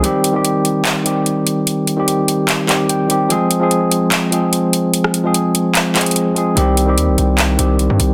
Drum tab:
HH |x---x---x---x---x---x---x---x---|x---x---x---x---x---x---x---x---|x---x---x---x---x---x---x---x---|x---x---x---x---x---xxxxx---x---|
CP |----------------x---------------|----------------x---x-----------|----------------x---------------|----------------x---x-----------|
SD |--------------------------------|--------------------------------|--------------------------------|--r-----------------------------|

HH |x---x---x---x---x---x---x---x---|
CP |----------------x---------------|
SD |--------------------------------|